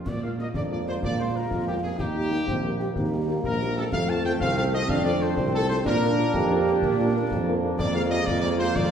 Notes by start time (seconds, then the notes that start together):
0.06 A#2 G#3 A#3 D5, concert bass drum, snare, crash
0.23 G#3 A#3 F4 F5
0.39 G#3 A#3 F4 D#5, snare
0.54 F2 D4 D5, concert bass drum, snare
0.71 G#3 A#3 F4 D5
0.86 G#3 A#3 F4 C5, snare
1.02 A#2 F4 D5, concert bass drum, snare
1.19 G#3 A#3 F4 C5
1.35 G#3 A#3 F4 A#4
1.51 F2, concert bass drum, snare
1.67 G#3 A#3 F4 G4
1.83 G#3 A#3 F4 G#4
1.98 D#2 G3 A#3 D#4 G4, concert bass drum, snare, crash
2.15 G3 A#3 G4
2.31 G3 A#3 G4, snare
2.47 A#1 C4, concert bass drum, snare
2.63 G3 A#3 G4
2.79 G3 A#3 G4, snare
2.95 D#2 A#3, concert bass drum, snare
3.12 G3 A#3 G4
3.28 G3 A#3 G4
3.44 A#1 A#4, concert bass drum, snare
3.60 G3 A#3 G4
3.76 G3 A#3 G4 A4
3.92 F2 A3 C4 F5, concert bass drum, snare, crash
4.08 C4 F4 A4 A5
4.24 C4 F4 A4 G5, snare
4.40 C2 C4 F5, concert bass drum, snare
4.56 C4 F4 A4 F5
4.73 C4 F4 A4 D#5, snare
4.89 F2 D4 F5, concert bass drum, snare
5.04 C4 F4 A4 D5
5.21 C4 F4 A4 C5
5.37 C2 C4, concert bass drum, snare
5.54 C4 F4 A4
5.69 C4 F4 A4 C5
5.85 A#2 A#3 D4 A#4, concert bass drum, snare, crash
6.03 D4 F4 A#4
6.18 D4 F4 A#4, snare
6.33 F2 G4, concert bass drum, snare
6.51 D4 F4 A#4
6.67 D4 F4 A#4, snare
6.82 A#2, concert bass drum, snare
6.99 D4 F4 A#4
7.14 D4 F4 A#4
7.31 F2, concert bass drum, snare
7.47 D4 F4 A#4
7.63 D4 F4 A#4
7.77 F2 G#3 A#3 F4 D5, concert bass drum, snare, crash
7.94 A#3 F4 G#4 F5
8.10 A#3 F4 G#4 D#5, snare
8.25 F2 D5, concert bass drum, snare
8.41 A#3 F4 G#4 D5
8.59 A#3 F4 G#4 C5, snare
8.75 F2 D5, concert bass drum, snare